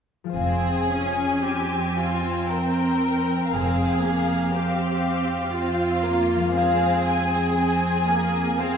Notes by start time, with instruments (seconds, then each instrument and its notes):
0.24 harp F3 G#3 F4
0.29 harp C5
0.34 double bass section F1, cello section F2, viola section C4, violin section G#4 G#5
0.90 viola section C#4
1.43 viola section C4, violin section G4
1.96 violin section F4
2.48 violin section A#4 G5
3.51 double bass section F1, cello section F2, viola section C4, violin section G#4 F5
4.02 viola section A#3
4.52 viola section C4, violin section G4
5.52 viola section C4, violin section F4
6.03 viola section A#3
6.36 harp F3
6.40 harp G#3
6.45 harp F4
6.49 harp C5
6.54 viola section C4, violin section G#4 F5
7.05 violin section G#5
7.56 viola section C4, violin section G#5
8.08 viola section A#3
8.58 viola section C4, violin section G#4 F5